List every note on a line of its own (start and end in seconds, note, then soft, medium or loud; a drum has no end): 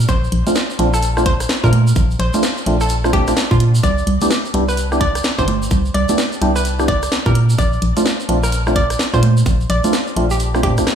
0.08 0.28 A#1 loud
0.08 0.32 C5 loud
0.08 kick loud
0.08 closed hi-hat medium
0.08 shaker medium
0.24 shaker soft
0.32 0.43 A#1 loud
0.32 closed hi-hat loud
0.47 0.57 A3 medium
0.47 0.57 C4 medium
0.47 0.57 D4 medium
0.47 0.57 F4 medium
0.47 closed hi-hat medium
0.47 high conga medium
0.47 shaker medium
0.55 snare loud
0.55 closed hi-hat medium
0.55 shaker medium
0.70 shaker soft
0.79 1.46 A#1 medium
0.79 0.89 A3 loud
0.79 0.89 C4 medium
0.79 0.89 D4 medium
0.79 0.89 F4 loud
0.79 closed hi-hat loud
0.94 1.09 A4 medium
0.94 cross-stick soft
0.94 shaker medium
1.03 closed hi-hat medium
1.03 shaker medium
1.17 1.27 A3 medium
1.17 1.27 C4 medium
1.17 1.27 D4 medium
1.17 1.27 F4 medium
1.17 cross-stick medium
1.17 shaker soft
1.26 1.44 C5 loud
1.26 kick loud
1.26 closed hi-hat loud
1.40 cross-stick medium
1.40 closed hi-hat medium
1.40 shaker medium
1.49 snare loud
1.49 shaker medium
1.64 1.93 A#2 medium
1.64 1.70 A3 medium
1.64 1.70 C4 medium
1.64 1.70 D4 medium
1.64 1.70 F4 loud
1.64 1.79 A#4 medium
1.64 kick medium
1.64 shaker soft
1.73 closed hi-hat loud
1.73 high conga medium
1.87 shaker medium
1.96 2.16 A#1 loud
1.96 kick loud
1.96 closed hi-hat medium
1.96 shaker medium
2.11 shaker soft
2.19 2.31 A#1 loud
2.19 2.34 C5 medium
2.19 closed hi-hat loud
2.34 2.45 A3 medium
2.34 2.45 C4 medium
2.34 2.45 D4 medium
2.34 2.45 F4 medium
2.34 closed hi-hat medium
2.34 high conga medium
2.34 shaker medium
2.43 snare loud
2.43 closed hi-hat medium
2.43 shaker medium
2.57 shaker soft
2.66 3.34 A#1 medium
2.66 2.76 A3 medium
2.66 2.77 C4 medium
2.66 2.76 D4 medium
2.66 2.77 F4 loud
2.66 closed hi-hat loud
2.81 2.96 A4 medium
2.81 cross-stick soft
2.81 shaker medium
2.89 closed hi-hat medium
2.89 shaker medium
3.04 3.12 A3 medium
3.04 3.12 C4 medium
3.04 3.12 D4 medium
3.04 3.12 F4 medium
3.04 cross-stick medium
3.04 shaker soft
3.13 3.26 A3 loud
3.13 3.26 C4 medium
3.13 3.26 D4 medium
3.13 3.32 G4 loud
3.13 3.26 G4 loud
3.13 kick loud
3.13 closed hi-hat loud
3.27 3.34 A3 loud
3.27 3.34 C4 medium
3.27 3.34 D4 medium
3.27 3.34 F4 loud
3.27 cross-stick medium
3.27 closed hi-hat medium
3.27 shaker medium
3.37 snare loud
3.37 shaker medium
3.51 3.80 A#2 medium
3.51 3.57 A3 medium
3.51 3.57 C4 medium
3.51 3.57 D4 medium
3.51 3.67 F4 loud
3.51 3.57 F4 loud
3.51 kick loud
3.51 shaker soft
3.60 closed hi-hat loud
3.75 shaker medium
3.83 4.03 C2 loud
3.83 4.06 D5 loud
3.83 kick loud
3.83 closed hi-hat medium
3.83 shaker medium
3.98 shaker soft
4.07 4.18 C2 loud
4.07 closed hi-hat loud
4.21 4.32 B3 medium
4.21 4.32 D4 medium
4.21 4.32 E4 medium
4.21 4.32 G4 medium
4.21 closed hi-hat medium
4.21 high conga medium
4.21 shaker medium
4.31 snare loud
4.31 closed hi-hat medium
4.31 shaker medium
4.45 shaker soft
4.54 5.21 C2 medium
4.54 4.64 B3 loud
4.54 4.64 D4 medium
4.54 4.64 E4 medium
4.54 4.64 G4 loud
4.54 closed hi-hat loud
4.68 4.84 B4 medium
4.68 cross-stick soft
4.68 shaker medium
4.77 closed hi-hat medium
4.77 shaker medium
4.92 5.02 B3 medium
4.92 5.02 D4 medium
4.92 5.02 E4 medium
4.92 5.02 G4 medium
4.92 cross-stick medium
4.92 shaker soft
5.01 5.19 D5 loud
5.01 kick loud
5.01 closed hi-hat loud
5.15 cross-stick medium
5.15 closed hi-hat medium
5.15 shaker medium
5.23 snare loud
5.23 shaker medium
5.38 5.68 G1 medium
5.38 5.45 B3 medium
5.38 5.45 D4 medium
5.38 5.45 E4 medium
5.38 5.45 G4 medium
5.38 5.54 C5 loud
5.38 kick medium
5.38 shaker soft
5.48 closed hi-hat loud
5.48 high conga medium
5.63 shaker medium
5.71 5.91 C2 loud
5.71 kick loud
5.71 closed hi-hat medium
5.71 shaker medium
5.85 shaker soft
5.94 6.06 C2 loud
5.94 6.09 D5 medium
5.94 closed hi-hat loud
6.09 6.19 B3 medium
6.09 6.20 D4 medium
6.09 6.20 E4 medium
6.09 6.20 G4 medium
6.09 closed hi-hat medium
6.09 high conga medium
6.09 shaker medium
6.18 snare loud
6.18 closed hi-hat medium
6.18 shaker medium
6.32 shaker soft
6.41 7.09 C2 medium
6.41 6.51 B3 loud
6.41 6.51 D4 medium
6.41 6.51 E4 medium
6.41 6.51 G4 loud
6.41 closed hi-hat loud
6.56 6.71 B4 medium
6.56 cross-stick soft
6.56 shaker medium
6.65 closed hi-hat medium
6.65 shaker medium
6.79 6.90 B3 medium
6.79 6.90 D4 medium
6.79 6.90 E4 medium
6.79 6.90 G4 medium
6.79 cross-stick medium
6.79 shaker soft
6.88 7.07 D5 loud
6.88 kick loud
6.88 closed hi-hat loud
7.03 cross-stick medium
7.03 closed hi-hat medium
7.03 shaker medium
7.12 snare loud
7.12 shaker medium
7.26 7.55 A#2 medium
7.26 7.32 B3 medium
7.26 7.32 D4 medium
7.26 7.32 E4 medium
7.26 7.32 G4 loud
7.26 7.42 A#4 loud
7.26 kick loud
7.26 shaker soft
7.35 closed hi-hat loud
7.50 shaker medium
7.58 7.78 A#1 loud
7.58 7.81 D5 loud
7.58 kick loud
7.58 closed hi-hat medium
7.58 shaker medium
7.73 shaker soft
7.82 7.93 A#1 loud
7.82 closed hi-hat loud
7.97 8.07 A3 medium
7.97 8.07 C4 medium
7.97 8.07 D4 medium
7.97 8.07 F4 medium
7.97 closed hi-hat medium
7.97 high conga medium
7.97 shaker medium
8.06 snare loud
8.06 closed hi-hat medium
8.06 shaker medium
8.20 shaker soft
8.29 8.96 A#1 medium
8.29 8.39 A3 loud
8.29 8.39 C4 medium
8.29 8.39 D4 medium
8.29 8.39 F4 loud
8.29 closed hi-hat loud
8.43 8.59 A#4 medium
8.43 cross-stick soft
8.43 shaker medium
8.52 closed hi-hat medium
8.52 shaker medium
8.67 8.77 A3 medium
8.67 8.77 C4 medium
8.67 8.77 D4 medium
8.67 8.77 F4 medium
8.67 cross-stick medium
8.67 shaker soft
8.76 8.94 D5 loud
8.76 kick loud
8.76 closed hi-hat loud
8.90 cross-stick medium
8.90 closed hi-hat medium
8.90 shaker medium
8.99 snare loud
8.99 shaker medium
9.14 9.43 A#2 medium
9.14 9.20 A3 medium
9.14 9.20 C4 medium
9.14 9.20 D4 medium
9.14 9.20 F4 loud
9.14 9.29 C5 loud
9.14 kick medium
9.14 shaker soft
9.23 closed hi-hat loud
9.23 high conga medium
9.37 shaker medium
9.46 9.66 A#1 loud
9.46 kick loud
9.46 closed hi-hat medium
9.46 shaker medium
9.61 shaker soft
9.70 9.81 A#1 loud
9.70 9.84 D5 medium
9.70 closed hi-hat loud
9.84 9.95 A3 medium
9.84 9.95 C4 medium
9.84 9.95 D4 medium
9.84 9.95 F4 medium
9.84 closed hi-hat medium
9.84 high conga medium
9.84 shaker medium
9.93 snare loud
9.93 closed hi-hat medium
9.93 shaker medium
10.07 shaker soft
10.16 10.65 A#1 medium
10.16 10.27 A3 medium
10.16 10.27 C4 medium
10.16 10.27 D4 medium
10.16 10.27 F4 loud
10.16 closed hi-hat loud
10.30 10.47 G4 medium
10.30 shaker medium
10.40 closed hi-hat medium
10.40 shaker medium
10.54 10.62 A3 medium
10.54 10.62 C4 medium
10.54 10.62 D4 medium
10.54 10.62 F4 medium
10.54 cross-stick medium
10.54 shaker soft
10.63 10.79 A#2 medium
10.63 10.76 A3 loud
10.63 10.76 C4 medium
10.63 10.76 D4 medium
10.63 10.82 G4 loud
10.63 10.76 G4 loud
10.63 kick loud
10.63 closed hi-hat loud
10.78 10.85 A#1 loud
10.78 10.84 A3 loud
10.78 10.84 C4 medium
10.78 10.84 D4 medium
10.78 10.84 F4 loud
10.78 cross-stick medium
10.78 closed hi-hat medium
10.78 shaker medium
10.87 cross-stick medium
10.87 snare loud
10.87 shaker medium